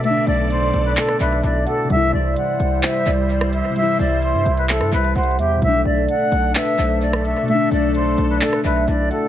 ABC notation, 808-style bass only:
X:1
M:4/4
L:1/16
Q:1/4=129
K:Bphr
V:1 name="808-style bass" clef=bass
z2 B,,,4 B,,,2 z2 B,,,2 B,,,2 z2 | C,,2 C,,2 z2 C,,2 z2 C,,4- C,, z | z2 C,,3 G,, C,,3 G,, C,,2 C,,2 E,,2 | B,,,2 B,,,2 z2 B,,,2 z2 B,,,4- B,,, z |
z2 B,,,4 B,,,2 z2 B,,,2 B,,,2 z2 |]